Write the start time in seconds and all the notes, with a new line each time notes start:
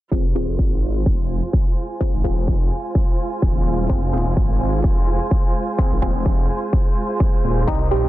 0.11 F1 C4 F4 G#4 C5 F5 C6, kick
0.27 C5
0.35 D#1 C4 F4 G#4 C5
0.49 F1
0.59 G#1, kick
1.01 G#5
1.06 F1, kick
1.53 kick
2.01 C4 F4 G#4 C5, kick
2.14 G#1
2.24 D#1 C4 F4 G#4 C5, kick
2.38 F1
2.48 kick
2.95 kick
3.42 D#1, kick
3.89 F1 C4 F4 G#4 C5, kick
4.13 D#1 C4 F4 G#4 C5
4.26 F1
4.37 G#1, kick
4.84 F1, kick
5.31 kick
5.78 C4 F4 G#4 C5, kick
5.92 G#1
6.02 D#1 C4 F4 G#4 C5, kick
6.15 F1
6.26 kick
6.73 kick
7.20 kick
7.44 D#1
7.67 C2 G3 C4 D#4 G4 C5 G5 D#6, kick, closed hi-hat
7.81 D#4
7.88 A#1 G3 C4 D#4 G4
8.04 C2, closed hi-hat